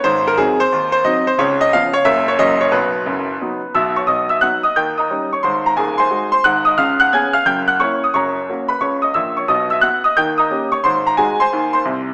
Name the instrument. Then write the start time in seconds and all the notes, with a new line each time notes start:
grand piano
0.04 G#1 G#2 C5
0.27 A#4
0.38 F#3 C4 D#4 G#4
0.60 C5
0.72 D#2 D#3
0.92 C5
1.05 F#3 C4 D#4 D#5
1.27 C5
1.38 C#2 C#3 C#5
1.61 D#5
1.73 F3 B3 C#4 F5
1.93 C#5
2.05 F#1 F#2 F#3 A#3 C#4 E5
2.28 C#5
2.39 F#1 F#2 F#3 A#3 C#4 D#5
2.61 C#5
2.72 B1 B2 B4
3.06 F#1 F#2
3.41 F#3 B3 D#4
3.74 B1 B2 E5 E6
3.96 C#5 C#6
4.07 B1 B2 D#5 D#6
4.29 E5 E6
4.41 F#3 B3 D#4 F#5 F#6
4.63 D#5 D#6
4.76 D#2 D#3 G5 G6
4.98 D#5 A#5 D#6
5.10 G3 C#4 D#4
5.33 C#5 C#6
5.43 G#1 G#2 C5 C6
5.66 A#5
5.77 D#1 D#2 G#4 G#5
5.98 C5 G#5 C6
6.10 G#3 D#4 F#4
6.32 C5 C6
6.44 G#1 G#2 F#5 F#6
6.65 D#5 D#6
6.78 C#2 C#3 F5 F6
7.00 F#5 F#6
7.13 B3 C#4 G#4 G#5 G#6
7.33 F5 F6
7.46 F#1 F#2 G5 G6
7.68 F#5 F#6
7.80 A#3 C#4 E4 C#5 C#6
8.04 D#6
8.14 F#1 F#2 C#5 A#5 C#6
8.49 A#3 C#4 F#4
8.68 B4 B5
8.81 C#2 C#3 C#5 C#6
9.02 D#5 D#6
9.14 A#1 A#2 E5 E6
9.37 C#5 C#6
9.48 B1 B2 D#5 D#6
9.70 E5 E6
9.81 B3 F#4 F#5 F#6
10.04 D#5 D#6
10.17 D#2 D#3 G5 G6
10.38 D#5 A#5 D#6
10.50 A#3 C#4 G4
10.72 C#5 C#6
10.84 G#1 G#2 C5 C6
11.07 A#5
11.17 G#3 D#4 F#4 G#4 G#5
11.40 C5 G#5 C6
11.53 D#2 D#3
11.73 C5 C6
11.85 C2 C3